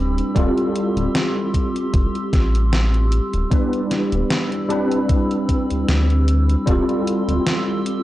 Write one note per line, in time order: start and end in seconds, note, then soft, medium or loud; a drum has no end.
0.00 0.22 D1 medium
0.00 0.28 G3 medium
0.00 0.29 C4 medium
0.00 0.35 C4 medium
0.00 0.29 D4 medium
0.00 0.29 E4 medium
0.00 6.64 G4 medium
0.00 0.30 B4 loud
0.00 0.33 B5 medium
0.00 3.47 E6 medium
0.18 closed hi-hat soft
0.35 0.49 D1 loud
0.35 3.44 G3 medium
0.35 3.44 C4 medium
0.35 3.45 E4 medium
0.35 3.45 F4 medium
0.35 3.45 A4 loud
0.35 3.48 C6 medium
0.35 kick loud
0.35 closed hi-hat medium
0.57 closed hi-hat soft
0.76 closed hi-hat medium
0.97 1.08 D1 medium
0.97 closed hi-hat medium
1.15 snare loud
1.15 closed hi-hat medium
1.54 kick medium
1.54 closed hi-hat medium
1.76 closed hi-hat medium
1.93 2.07 F1 medium
1.93 kick loud
1.93 closed hi-hat medium
2.15 closed hi-hat soft
2.33 3.20 A1 medium
2.33 kick loud
2.33 snare medium
2.33 closed hi-hat medium
2.55 closed hi-hat medium
2.73 snare loud
2.73 closed hi-hat medium
2.94 closed hi-hat soft
3.12 closed hi-hat medium
3.33 3.45 D1 medium
3.33 closed hi-hat soft
3.50 4.62 G3 medium
3.50 4.63 B3 medium
3.50 4.63 D4 medium
3.50 4.64 E4 medium
3.50 4.64 B4 medium
3.50 4.69 D5 medium
3.50 6.64 B5 medium
3.50 6.64 E6 medium
3.50 kick loud
3.50 closed hi-hat medium
3.73 closed hi-hat soft
3.91 snare medium
3.91 closed hi-hat medium
4.12 4.23 D1 medium
4.12 closed hi-hat medium
4.30 snare loud
4.30 closed hi-hat medium
4.52 closed hi-hat soft
4.68 6.59 G3 medium
4.68 6.60 C4 medium
4.68 6.66 C4 medium
4.68 6.60 D4 medium
4.68 6.61 E4 medium
4.68 6.61 B4 loud
4.68 closed hi-hat medium
4.91 closed hi-hat medium
5.09 kick loud
5.09 closed hi-hat medium
5.31 closed hi-hat soft
5.49 kick medium
5.49 closed hi-hat medium
5.70 5.85 D2 soft
5.70 closed hi-hat medium
5.88 6.56 D2 medium
5.88 snare loud
5.88 closed hi-hat medium
6.10 closed hi-hat soft
6.28 closed hi-hat medium
6.49 closed hi-hat medium
6.66 6.80 D1 loud
6.66 8.03 G3 medium
6.66 8.03 C4 medium
6.66 8.03 E4 medium
6.66 8.03 F4 medium
6.66 8.03 G4 medium
6.66 8.03 A4 loud
6.66 8.03 C6 medium
6.66 8.03 E6 medium
6.66 kick loud
6.66 closed hi-hat medium
6.89 closed hi-hat soft
7.07 closed hi-hat medium
7.28 7.39 D1 medium
7.28 closed hi-hat medium
7.47 snare loud
7.47 closed hi-hat medium
7.86 closed hi-hat medium